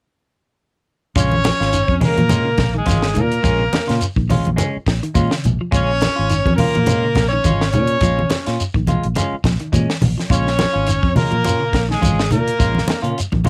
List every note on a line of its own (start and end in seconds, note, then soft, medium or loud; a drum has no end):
1.16 1.50 A#1 loud
1.16 1.34 C#3 loud
1.16 1.35 G#3 medium
1.16 1.35 C#4 medium
1.16 2.00 C#4 loud
1.16 1.35 F4 medium
1.16 1.99 C#5 loud
1.16 kick medium
1.16 closed hi-hat medium
1.16 shekere medium
1.32 high conga medium
1.44 1.63 F3 medium
1.44 snare medium
1.44 closed hi-hat soft
1.44 high conga loud
1.44 shekere soft
1.60 1.83 G#1 medium
1.60 1.77 C#4 soft
1.60 1.77 F4 medium
1.60 snare soft
1.73 1.91 D#3 medium
1.73 closed hi-hat medium
1.73 shekere medium
1.88 1.99 F2 medium
1.88 kick medium
2.00 2.11 C#3 medium
2.00 2.20 G#3 medium
2.00 2.20 C#4 medium
2.00 muted clean electric guitar stroke medium
2.00 open hi-hat medium
2.00 high conga medium
2.00 low conga medium
2.00 shekere soft
2.05 2.73 A#3 medium
2.05 2.73 A#4 loud
2.18 2.59 A#2 medium
2.18 2.35 F3 medium
2.18 closed hi-hat medium
2.18 high conga medium
2.29 2.49 G#3 medium
2.29 2.49 C#4 medium
2.29 2.49 F4 medium
2.29 closed hi-hat medium
2.29 high conga medium
2.29 low conga medium
2.29 shekere medium
2.45 2.63 C#3 medium
2.58 2.81 A#1 loud
2.58 kick medium
2.58 snare medium
2.58 closed hi-hat medium
2.58 low conga medium
2.58 shekere soft
2.74 2.83 D#3 medium
2.74 3.20 G#3 medium
2.74 3.22 G#4 medium
2.85 3.18 G#1 medium
2.85 3.04 C#3 medium
2.85 3.05 G#3 medium
2.85 3.05 C#4 medium
2.85 3.06 F4 medium
2.85 kick medium
2.85 snare soft
2.85 closed hi-hat medium
2.85 high conga medium
2.89 shekere medium
3.02 snare medium
3.14 3.39 A#2 medium
3.14 3.32 D#3 medium
3.14 closed hi-hat medium
3.14 low conga medium
3.14 shekere soft
3.18 4.03 A#3 medium
3.18 4.04 A#4 loud
3.32 closed hi-hat medium
3.43 3.67 A#1 loud
3.43 3.53 F3 medium
3.43 3.63 G#3 medium
3.43 3.63 C#4 medium
3.43 3.63 F4 medium
3.43 kick medium
3.43 closed hi-hat medium
3.43 shekere medium
3.59 3.77 C3 medium
3.73 muted fingered electric bass stroke soft
3.73 snare medium
3.73 closed hi-hat medium
3.73 high conga loud
3.73 shekere soft
3.87 4.00 A#2 medium
3.87 4.05 C#3 medium
3.87 4.05 C#4 medium
3.87 4.05 F4 medium
3.87 snare soft
3.87 closed hi-hat medium
4.01 closed hi-hat medium
4.01 shekere medium
4.16 4.39 A#1 loud
4.16 4.25 D#3 medium
4.16 kick medium
4.29 4.47 C#3 medium
4.29 4.49 G#3 medium
4.29 4.49 C#4 medium
4.29 4.49 F4 medium
4.29 open hi-hat medium
4.29 high conga medium
4.29 low conga medium
4.29 shekere soft
4.45 4.57 A#1 medium
4.45 closed hi-hat soft
4.45 high conga medium
4.56 4.76 C#3 medium
4.56 4.76 G#3 medium
4.56 4.77 C#4 medium
4.56 muted clean electric guitar stroke medium
4.56 closed hi-hat medium
4.56 high conga medium
4.56 shekere medium
4.77 muted fingered electric bass stroke soft
4.86 4.99 A#1 medium
4.86 4.97 F3 medium
4.86 kick medium
4.86 snare medium
4.86 closed hi-hat medium
4.86 shekere soft
5.03 5.21 D#3 medium
5.03 closed hi-hat medium
5.14 5.28 A#2 medium
5.14 5.34 G#3 medium
5.14 5.34 C#4 medium
5.14 5.34 F4 medium
5.14 kick medium
5.14 closed hi-hat medium
5.14 high conga medium
5.14 shekere medium
5.31 5.49 C#3 medium
5.31 snare medium
5.44 5.57 A#1 medium
5.44 closed hi-hat medium
5.44 low conga medium
5.44 shekere soft
5.61 5.69 F3 medium
5.71 6.07 A#1 loud
5.71 5.91 C#3 medium
5.71 5.91 G#3 medium
5.71 5.91 C#4 medium
5.71 5.91 F4 medium
5.71 6.56 C#5 loud
5.71 kick loud
5.71 closed hi-hat medium
5.71 shekere medium
5.76 6.56 C#4 medium
6.01 muted clean electric guitar stroke medium
6.01 snare medium
6.01 closed hi-hat medium
6.01 high conga medium
6.01 shekere soft
6.16 6.41 G#1 medium
6.16 6.34 C#4 soft
6.16 6.33 F4 medium
6.29 6.48 D#3 loud
6.29 closed hi-hat medium
6.29 shekere medium
6.45 6.56 F2 medium
6.45 kick medium
6.45 high conga medium
6.56 6.69 C#3 medium
6.56 7.28 A#3 medium
6.56 6.78 C#4 medium
6.56 6.78 F4 medium
6.56 7.27 A#4 loud
6.56 open hi-hat medium
6.56 high conga medium
6.56 low conga medium
6.56 shekere soft
6.75 7.17 A#2 medium
6.75 6.93 F3 medium
6.75 closed hi-hat medium
6.75 high conga medium
6.86 7.06 G#3 medium
6.86 7.06 C#4 medium
6.86 7.07 F4 medium
6.86 closed hi-hat medium
6.86 high conga medium
6.86 low conga medium
6.86 shekere medium
7.05 7.22 C#3 medium
7.15 7.38 A#1 medium
7.15 kick medium
7.15 snare medium
7.15 closed hi-hat medium
7.15 low conga medium
7.15 shekere soft
7.28 7.69 C#4 medium
7.28 7.69 C#5 loud
7.33 7.40 D#3 medium
7.44 7.77 G#1 medium
7.44 7.63 C#3 medium
7.44 7.63 G#3 medium
7.44 7.64 C#4 medium
7.44 7.64 F4 medium
7.44 kick medium
7.44 closed hi-hat medium
7.44 high conga medium
7.44 shekere medium
7.61 snare medium
7.71 7.96 A#2 loud
7.71 7.91 D#3 medium
7.71 8.54 C#4 medium
7.71 8.54 C#5 loud
7.71 closed hi-hat medium
7.71 low conga loud
7.71 shekere soft
7.87 closed hi-hat medium
8.01 8.24 A#1 loud
8.01 8.12 F3 medium
8.01 8.21 G#3 medium
8.01 8.21 C#4 medium
8.01 8.21 F4 medium
8.01 kick medium
8.01 closed hi-hat medium
8.01 shekere medium
8.18 8.35 C3 medium
8.18 high conga medium
8.30 muted fingered electric bass stroke soft
8.30 snare medium
8.30 closed hi-hat medium
8.30 high conga loud
8.30 shekere soft
8.46 8.57 A#2 medium
8.46 8.63 C#4 medium
8.46 8.62 F4 medium
8.46 muted clean electric guitar stroke medium
8.46 snare soft
8.46 closed hi-hat medium
8.60 closed hi-hat medium
8.60 shekere medium
8.74 8.97 A#1 loud
8.74 8.83 D#3 medium
8.74 kick medium
8.87 9.06 G#3 medium
8.87 9.06 F4 medium
8.87 muted clean electric guitar stroke medium
8.87 closed hi-hat medium
8.87 high conga medium
8.87 low conga medium
8.87 shekere soft
9.04 9.14 A#1 medium
9.04 closed hi-hat soft
9.15 9.33 C#3 medium
9.15 9.35 G#3 medium
9.15 9.35 C#4 medium
9.15 9.35 F4 medium
9.15 closed hi-hat medium
9.15 high conga medium
9.15 shekere loud
9.33 muted fingered electric bass stroke soft
9.44 9.56 A#1 medium
9.44 9.54 F3 medium
9.44 kick medium
9.44 snare medium
9.44 closed hi-hat medium
9.44 low conga medium
9.44 shekere soft
9.60 9.78 D#3 medium
9.60 closed hi-hat soft
9.72 9.85 A#2 medium
9.72 9.91 G#3 medium
9.72 9.92 C#4 medium
9.72 muted clean electric guitar stroke medium
9.72 kick medium
9.72 closed hi-hat medium
9.72 high conga medium
9.72 shekere medium
9.90 snare medium
10.02 10.14 A#1 medium
10.02 open hi-hat medium
10.02 high conga medium
10.02 low conga loud
10.02 shekere soft
10.18 10.25 F3 medium
10.18 snare soft
10.30 10.64 A#1 loud
10.30 10.48 C#3 medium
10.30 10.48 G#3 medium
10.30 11.14 C#4 loud
10.30 10.49 F4 medium
10.30 11.12 C#5 loud
10.30 muted clean electric guitar stroke medium
10.30 kick medium
10.30 closed hi-hat medium
10.30 shekere medium
10.47 snare soft
10.59 10.77 F3 medium
10.59 snare medium
10.59 closed hi-hat soft
10.59 high conga loud
10.59 shekere soft
10.73 10.97 G#1 medium
10.73 10.90 C#4 soft
10.73 10.90 F4 medium
10.86 11.05 D#3 medium
10.86 closed hi-hat medium
10.86 shekere medium
11.03 11.13 F2 medium
11.03 kick medium
11.15 11.25 C#3 medium
11.15 11.34 G#3 medium
11.15 11.86 A#3 medium
11.15 11.35 C#4 medium
11.15 11.35 F4 medium
11.15 11.86 A#4 loud
11.15 open hi-hat medium
11.15 high conga medium
11.15 low conga loud
11.19 shekere soft
11.31 11.74 A#2 medium
11.31 11.49 F3 medium
11.31 closed hi-hat soft
11.44 11.63 C#4 medium
11.44 11.63 F4 medium
11.44 muted clean electric guitar stroke medium
11.44 closed hi-hat medium
11.44 high conga medium
11.44 shekere medium
11.60 11.77 C#3 medium
11.73 11.95 A#1 medium
11.73 kick medium
11.73 snare medium
11.73 closed hi-hat medium
11.73 shekere soft
11.89 11.97 D#3 medium
11.89 12.30 G#3 medium
11.89 12.29 G#4 medium
11.89 snare soft
12.01 12.32 G#1 medium
12.01 12.19 C#3 medium
12.01 12.20 G#3 medium
12.01 12.20 C#4 medium
12.01 12.20 F4 medium
12.01 kick medium
12.01 closed hi-hat medium
12.01 high conga medium
12.01 shekere medium
12.19 snare medium
12.31 12.53 A#2 loud
12.31 12.48 D#3 medium
12.31 13.14 A#3 medium
12.31 13.13 A#4 loud
12.31 closed hi-hat medium
12.31 low conga medium
12.31 shekere soft
12.48 closed hi-hat medium
12.59 12.82 A#1 loud
12.59 12.69 F3 medium
12.59 12.77 G#3 medium
12.59 12.78 C#4 medium
12.59 12.78 F4 medium
12.59 kick loud
12.59 closed hi-hat medium
12.59 shekere medium
12.74 12.92 C3 medium
12.74 snare soft
12.74 high conga medium
12.88 muted fingered electric bass stroke soft
12.88 snare medium
12.88 closed hi-hat medium
12.88 high conga loud
12.88 shekere soft
13.02 13.13 A#2 medium
13.02 13.21 C#3 medium
13.02 13.19 C#4 medium
13.02 13.19 F4 medium
13.02 closed hi-hat medium
13.18 closed hi-hat medium
13.18 shekere medium
13.32 13.49 A#1 loud
13.32 13.40 D#3 medium
13.32 kick medium
13.32 high conga medium
13.45 13.49 C#3 medium
13.45 13.49 G#3 medium
13.45 13.49 C#4 medium
13.45 13.49 F4 medium
13.45 high conga medium
13.45 low conga medium